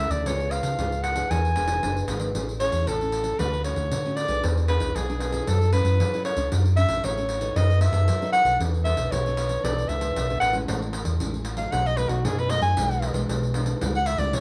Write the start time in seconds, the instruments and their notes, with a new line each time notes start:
Already playing: nylon-string guitar C#3 C#4 E4 A4, clarinet E5
0.10 fingered electric bass D2, clarinet D5, pandeiro
0.25 fingered electric bass C#2, nylon-string guitar C#3 B3 F4 G#4, clarinet C#5, pandeiro
0.40 pandeiro
0.51 clarinet F5, pandeiro
0.63 fingered electric bass C#3, pandeiro
0.78 fingered electric bass C#2, nylon-string guitar G#2 B3 F4 G#4, pandeiro
0.92 pandeiro
1.03 clarinet F#5, pandeiro
1.16 nylon-string guitar B3 D4 G#4, pandeiro
1.31 fingered electric bass E2, nylon-string guitar E3, clarinet G#5, pandeiro
1.45 pandeiro
1.56 fingered electric bass E1, nylon-string guitar B3 D4 G#4, pandeiro
1.68 pandeiro
1.83 fingered electric bass F#1, nylon-string guitar B2 B3 D4 G#4, pandeiro
1.97 pandeiro
2.07 fingered electric bass G#1, nylon-string guitar B3 D4 G#4, pandeiro
2.20 pandeiro
2.35 fingered electric bass A1, nylon-string guitar A3 C#4 E4 G#4, pandeiro
2.49 pandeiro
2.60 nylon-string guitar C#4 E4 G#4, soprano saxophone C#5, pandeiro
2.72 fingered electric bass E2, pandeiro
2.87 fingered electric bass A1, nylon-string guitar E3, soprano saxophone A4, pandeiro
3.01 nylon-string guitar C#4 E4, pandeiro
3.12 pandeiro
3.24 pandeiro
3.39 fingered electric bass D2, nylon-string guitar D3 A3 C#4 F#4, soprano saxophone B4, pandeiro
3.54 pandeiro
3.64 nylon-string guitar A3 C#4 F#4, soprano saxophone C#5, pandeiro
3.76 fingered electric bass D2, pandeiro
3.91 nylon-string guitar A2, fingered electric bass D3, pandeiro
4.05 nylon-string guitar A3 C#4 F#4, pandeiro
4.16 soprano saxophone D5, pandeiro
4.28 fingered electric bass B1, nylon-string guitar B3 D4 G#4, pandeiro
4.43 fingered electric bass E2, nylon-string guitar E3, pandeiro
4.57 pandeiro
4.68 nylon-string guitar B3 D4 G#4, soprano saxophone B4, pandeiro
4.80 fingered electric bass B1, pandeiro
4.96 fingered electric bass B1, nylon-string guitar B2, soprano saxophone G#4, pandeiro
5.09 nylon-string guitar B3 D4 G#4, pandeiro
5.20 pandeiro
5.32 nylon-string guitar C#4 E4 A4, pandeiro
5.47 fingered electric bass F#2, nylon-string guitar F#3, soprano saxophone A4, pandeiro
5.62 pandeiro
5.72 nylon-string guitar C#4 E4 A4, soprano saxophone B4, pandeiro
5.85 fingered electric bass F#2, pandeiro
6.00 nylon-string guitar C#3, fingered electric bass F#3, pandeiro
6.14 nylon-string guitar C#4 E4 A4, pandeiro
6.25 soprano saxophone C#5, pandeiro
6.36 fingered electric bass C#2, nylon-string guitar C#4 D4 A4, pandeiro
6.52 fingered electric bass F#2, nylon-string guitar F#3, pandeiro
6.66 pandeiro
6.76 nylon-string guitar C#4 D4 A4, soprano saxophone E5, pandeiro
6.89 fingered electric bass A1, pandeiro
7.04 fingered electric bass A1, nylon-string guitar F#3, soprano saxophone C#5, pandeiro
7.17 nylon-string guitar C#4 D4 A4, pandeiro
7.29 pandeiro
7.41 nylon-string guitar B3 D#4 A4, pandeiro
7.56 fingered electric bass F#2, nylon-string guitar F#3, soprano saxophone D#5, pandeiro
7.70 pandeiro
7.81 nylon-string guitar B3 D#4 A4, soprano saxophone E5, pandeiro
7.92 fingered electric bass F#2, pandeiro
8.08 fingered electric bass F#3, nylon-string guitar F#3, pandeiro
8.22 nylon-string guitar B3 D#4 A4, pandeiro
8.33 soprano saxophone F#5, pandeiro
8.45 fingered electric bass B1, nylon-string guitar B3 D4 A4, pandeiro
8.60 fingered electric bass E2, nylon-string guitar E3, pandeiro
8.74 pandeiro
8.85 nylon-string guitar B3 D4 A4, soprano saxophone E5, pandeiro
8.96 fingered electric bass B1, pandeiro
9.12 fingered electric bass B1, nylon-string guitar B2, soprano saxophone C#5, pandeiro
9.26 nylon-string guitar B3 D4 A4, pandeiro
9.37 pandeiro
9.49 pandeiro
9.64 fingered electric bass B1, nylon-string guitar E3 B3 D4 A4, soprano saxophone D5, pandeiro
9.78 pandeiro
9.88 fingered electric bass C#2, nylon-string guitar B3 D4 A4, soprano saxophone E5, pandeiro
10.01 pandeiro
10.16 fingered electric bass B1, nylon-string guitar B2, pandeiro
10.30 nylon-string guitar B3 D4 A4, pandeiro
10.40 fingered electric bass A1, soprano saxophone F#5, pandeiro
10.53 nylon-string guitar G#3 C#4 E4, pandeiro
10.68 fingered electric bass A1, nylon-string guitar A2, pandeiro
10.82 pandeiro
10.93 pandeiro
11.05 fingered electric bass E2, pandeiro
11.20 fingered electric bass A1, nylon-string guitar E3 G#3 C#4 E4, pandeiro
11.34 pandeiro
11.45 pandeiro
11.57 nylon-string guitar F#3 A3 D#4, soprano saxophone F5, pandeiro
11.72 fingered electric bass B1, nylon-string guitar B2, soprano saxophone F#5, pandeiro
11.86 soprano saxophone D#5, pandeiro
11.97 nylon-string guitar F#3 A3 D#4, soprano saxophone B4, pandeiro
12.09 fingered electric bass B1, soprano saxophone F#4, pandeiro
12.24 nylon-string guitar F#2, fingered electric bass B2, soprano saxophone G#4, pandeiro
12.39 soprano saxophone B4, pandeiro
12.50 nylon-string guitar F#3 A3 D#4, soprano saxophone D#5, pandeiro
12.61 fingered electric bass F#2, soprano saxophone G#5, pandeiro
12.77 fingered electric bass B1, nylon-string guitar B2 E3 G#3 D4, pandeiro
12.91 pandeiro
13.02 pandeiro
13.14 fingered electric bass B1, nylon-string guitar E3 G#3 D4, pandeiro
13.29 fingered electric bass B1, nylon-string guitar B2, pandeiro
13.43 pandeiro
13.54 nylon-string guitar E3 G#3 D4, pandeiro
13.66 pandeiro
13.81 fingered electric bass C#2, nylon-string guitar C#3 G3 A3 E4, pandeiro
13.95 soprano saxophone F#5, pandeiro
14.06 soprano saxophone E5, pandeiro
14.18 fingered electric bass C#2, nylon-string guitar G3 A3 E4, soprano saxophone D5, pandeiro
14.33 fingered electric bass C#3, nylon-string guitar C#3, soprano saxophone C#5, pandeiro